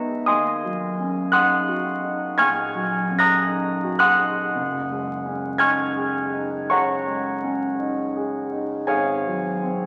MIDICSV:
0, 0, Header, 1, 2, 480
1, 0, Start_track
1, 0, Tempo, 1050788
1, 130, Time_signature, 4, 2, 24, 8
1, 1092, Tempo, 1073345
1, 2532, Tempo, 1094891
1, 4395, End_track
2, 0, Start_track
2, 0, Title_t, "Grand piano"
2, 0, Program_c, 0, 0
2, 0, Control_c, 0, 64, 127
2, 0, Note_on_c, 0, 47, 42
2, 0, Note_on_c, 0, 56, 40
2, 0, Note_on_c, 0, 59, 42
2, 0, Note_on_c, 0, 63, 43
2, 0, Note_on_c, 0, 71, 62
2, 0, Note_on_c, 0, 76, 64
2, 0, Note_on_c, 0, 80, 64
2, 0, Note_on_c, 0, 82, 66
2, 0, Note_on_c, 0, 83, 81
2, 0, Note_on_c, 0, 85, 64
2, 0, Note_on_c, 0, 88, 82
2, 71, Note_off_c, 0, 59, 0
2, 112, Note_off_c, 0, 76, 0
2, 113, Note_off_c, 0, 82, 0
2, 113, Note_off_c, 0, 85, 0
2, 120, Note_on_c, 0, 87, 83
2, 125, Note_off_c, 0, 80, 0
2, 125, Note_on_c, 0, 80, 61
2, 126, Note_on_c, 0, 75, 62
2, 127, Note_on_c, 0, 84, 65
2, 129, Note_on_c, 0, 39, 53
2, 130, Note_off_c, 0, 88, 0
2, 133, Note_off_c, 0, 63, 0
2, 139, Note_off_c, 0, 71, 0
2, 139, Control_c, 0, 64, 0
2, 141, Note_off_c, 0, 83, 0
2, 142, Note_off_c, 0, 47, 0
2, 143, Note_off_c, 0, 56, 0
2, 201, Control_c, 0, 64, 127
2, 294, Note_on_c, 0, 54, 39
2, 454, Note_on_c, 0, 61, 43
2, 551, Note_off_c, 0, 54, 0
2, 593, Note_off_c, 0, 75, 0
2, 593, Note_off_c, 0, 80, 0
2, 594, Note_off_c, 0, 84, 0
2, 601, Note_off_c, 0, 87, 0
2, 602, Note_on_c, 0, 90, 88
2, 608, Note_on_c, 0, 78, 70
2, 608, Note_on_c, 0, 84, 69
2, 608, Note_on_c, 0, 87, 71
2, 611, Note_on_c, 0, 63, 46
2, 710, Note_off_c, 0, 61, 0
2, 768, Note_on_c, 0, 66, 49
2, 866, Note_off_c, 0, 63, 0
2, 934, Note_on_c, 0, 63, 46
2, 1025, Note_off_c, 0, 66, 0
2, 1070, Note_off_c, 0, 78, 0
2, 1070, Note_off_c, 0, 84, 0
2, 1070, Note_off_c, 0, 87, 0
2, 1072, Note_off_c, 0, 39, 0
2, 1086, Note_off_c, 0, 90, 0
2, 1086, Note_on_c, 0, 92, 97
2, 1089, Note_on_c, 0, 85, 72
2, 1091, Note_on_c, 0, 80, 74
2, 1092, Note_on_c, 0, 89, 72
2, 1095, Note_on_c, 0, 46, 43
2, 1188, Note_off_c, 0, 63, 0
2, 1253, Note_on_c, 0, 54, 44
2, 1350, Note_off_c, 0, 46, 0
2, 1412, Note_on_c, 0, 61, 44
2, 1434, Note_off_c, 0, 85, 0
2, 1435, Note_off_c, 0, 80, 0
2, 1436, Note_off_c, 0, 89, 0
2, 1448, Note_on_c, 0, 94, 90
2, 1450, Note_off_c, 0, 92, 0
2, 1450, Note_on_c, 0, 90, 71
2, 1453, Note_on_c, 0, 82, 71
2, 1454, Note_on_c, 0, 87, 72
2, 1511, Note_off_c, 0, 54, 0
2, 1573, Note_on_c, 0, 63, 46
2, 1672, Note_off_c, 0, 61, 0
2, 1739, Note_on_c, 0, 66, 46
2, 1799, Note_off_c, 0, 90, 0
2, 1800, Note_off_c, 0, 82, 0
2, 1801, Note_off_c, 0, 87, 0
2, 1807, Note_on_c, 0, 90, 93
2, 1810, Note_on_c, 0, 84, 70
2, 1811, Note_on_c, 0, 78, 74
2, 1811, Note_on_c, 0, 87, 72
2, 1815, Note_off_c, 0, 94, 0
2, 1833, Note_off_c, 0, 63, 0
2, 1899, Note_on_c, 0, 63, 50
2, 1995, Note_off_c, 0, 66, 0
2, 2058, Note_off_c, 0, 63, 0
2, 2059, Note_on_c, 0, 30, 54
2, 2065, Control_c, 0, 64, 0
2, 2146, Control_c, 0, 64, 127
2, 2219, Note_on_c, 0, 56, 42
2, 2375, Note_on_c, 0, 61, 44
2, 2468, Note_off_c, 0, 56, 0
2, 2508, Note_off_c, 0, 84, 0
2, 2508, Note_off_c, 0, 87, 0
2, 2509, Note_off_c, 0, 78, 0
2, 2520, Note_on_c, 0, 92, 93
2, 2524, Note_on_c, 0, 80, 68
2, 2525, Note_off_c, 0, 90, 0
2, 2526, Note_on_c, 0, 89, 73
2, 2528, Note_on_c, 0, 63, 47
2, 2528, Note_on_c, 0, 85, 69
2, 2626, Note_off_c, 0, 61, 0
2, 2686, Note_on_c, 0, 68, 48
2, 2783, Note_off_c, 0, 63, 0
2, 2848, Note_on_c, 0, 63, 45
2, 2946, Note_off_c, 0, 68, 0
2, 2991, Note_off_c, 0, 80, 0
2, 2992, Note_off_c, 0, 89, 0
2, 2993, Note_off_c, 0, 85, 0
2, 2994, Note_off_c, 0, 30, 0
2, 3006, Note_off_c, 0, 92, 0
2, 3009, Note_on_c, 0, 85, 84
2, 3013, Note_on_c, 0, 78, 65
2, 3014, Note_on_c, 0, 73, 64
2, 3015, Note_on_c, 0, 82, 62
2, 3017, Note_on_c, 0, 37, 44
2, 3109, Note_off_c, 0, 63, 0
2, 3175, Note_on_c, 0, 56, 44
2, 3272, Note_off_c, 0, 37, 0
2, 3333, Note_on_c, 0, 61, 43
2, 3428, Note_off_c, 0, 56, 0
2, 3473, Note_off_c, 0, 78, 0
2, 3474, Note_off_c, 0, 73, 0
2, 3474, Note_off_c, 0, 82, 0
2, 3488, Note_off_c, 0, 85, 0
2, 3489, Note_on_c, 0, 63, 48
2, 3584, Note_off_c, 0, 61, 0
2, 3651, Note_on_c, 0, 68, 44
2, 3743, Note_off_c, 0, 63, 0
2, 3807, Note_on_c, 0, 63, 46
2, 3905, Note_off_c, 0, 68, 0
2, 3961, Note_on_c, 0, 80, 78
2, 3964, Note_on_c, 0, 73, 64
2, 3965, Note_on_c, 0, 68, 62
2, 3965, Note_on_c, 0, 77, 64
2, 3966, Note_on_c, 0, 32, 51
2, 3968, Note_off_c, 0, 63, 0
2, 3975, Control_c, 0, 64, 0
2, 4064, Control_c, 0, 64, 127
2, 4135, Note_on_c, 0, 54, 41
2, 4288, Note_on_c, 0, 60, 42
2, 4389, Note_off_c, 0, 54, 0
2, 4395, Note_off_c, 0, 32, 0
2, 4395, Note_off_c, 0, 60, 0
2, 4395, Note_off_c, 0, 68, 0
2, 4395, Note_off_c, 0, 73, 0
2, 4395, Note_off_c, 0, 77, 0
2, 4395, Note_off_c, 0, 80, 0
2, 4395, End_track
0, 0, End_of_file